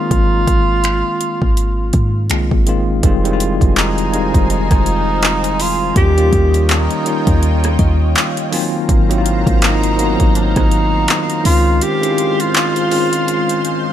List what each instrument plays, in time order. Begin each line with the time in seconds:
Already playing: tine electric piano D#3 G#3 A#3 C4 F4, tenor saxophone F4
0.11 808-style bass G#1, kick, closed hi-hat
0.47 808-style bass G#1, kick, closed hi-hat
0.84 finger snap, closed hi-hat
1.21 closed hi-hat
1.42 808-style bass G#1, kick
1.57 closed hi-hat
1.93 808-style bass G#2, kick, closed hi-hat
2.30 808-style bass C2, tine electric piano D#3 G#3 A#3 C4 F4, finger snap, closed hi-hat
2.51 808-style bass G#1, kick
2.66 tine electric piano D#3 G#3 A#3 C4 F4, closed hi-hat
3.03 808-style bass F1, tine electric piano D#3 G3 G#3 C4 F4, analog synth pad F4 C5 D#5 G#5, kick, closed hi-hat
3.24 tine electric piano D#3 G3 G#3 C4 E4, closed hi-hat
3.33 tine electric piano F4
3.40 closed hi-hat
3.61 808-style bass F1, kick, closed hi-hat
3.76 tenor saxophone D#4, clap, closed hi-hat
3.98 closed hi-hat
4.13 tine electric piano D#3 G3 G#3 C4 F4, closed hi-hat
4.34 808-style bass F1, kick, closed hi-hat
4.50 tenor saxophone D#4, closed hi-hat
4.71 808-style bass F1, kick, cross-stick, closed hi-hat
4.86 closed hi-hat
5.22 clap, closed hi-hat
5.44 closed hi-hat
5.60 tenor saxophone F4, open hi-hat
5.96 808-style bass D#2, tine electric piano D#3 G3 A#3 C#4 F4, analog synth pad F4 C#5 D#5 G5, tenor saxophone G4, kick, closed hi-hat
6.17 tine electric piano D#3 G3 A#3 C#4 F4, closed hi-hat
6.33 808-style bass D#2, kick, closed hi-hat
6.54 closed hi-hat
6.69 tenor saxophone D#4, clap, closed hi-hat
6.91 closed hi-hat
7.05 tine electric piano D#3 G3 A#3 C#4 F4, closed hi-hat
7.27 808-style bass D#2, kick, closed hi-hat
7.43 closed hi-hat
7.64 cross-stick, closed hi-hat
7.79 808-style bass D#2, tine electric piano D#5, kick, closed hi-hat
8.16 tine electric piano F5, clap, closed hi-hat
8.37 closed hi-hat
8.51 tine electric piano D#3 F#3 A#3 C4 F4 G#5, analog synth pad F#3 C5 F5 A#5, open hi-hat
8.89 808-style bass G#1, kick, closed hi-hat
9.09 tine electric piano D#3 F#3 A#3 C4 E4, closed hi-hat
9.18 tine electric piano F4
9.26 closed hi-hat
9.47 808-style bass G#1, kick, closed hi-hat
9.62 tenor saxophone D#4, clap, closed hi-hat
9.83 closed hi-hat
9.98 tine electric piano D#3 F#3 A#3 B3 F#4, closed hi-hat
10.06 tine electric piano C4
10.20 808-style bass G#1, kick, closed hi-hat
10.35 tenor saxophone D#4, closed hi-hat
10.56 808-style bass G#1, kick, cross-stick, closed hi-hat
10.71 closed hi-hat
11.08 clap, closed hi-hat
11.30 closed hi-hat
11.43 808-style bass C#2, tine electric piano D#3 G#3 C4 C#4 F4, analog synth pad G#3 C5 C6, tenor saxophone F4, open hi-hat
11.81 tenor saxophone G4, closed hi-hat
12.01 tine electric piano D#3 G#3 C4 C#4 E4, closed hi-hat
12.10 tine electric piano F4
12.18 closed hi-hat
12.40 tenor saxophone F4, closed hi-hat
12.54 clap, closed hi-hat
12.76 closed hi-hat
12.90 tine electric piano D#3 G#3 C4 C#4 F4, open hi-hat
13.13 closed hi-hat
13.28 closed hi-hat
13.49 closed hi-hat
13.65 closed hi-hat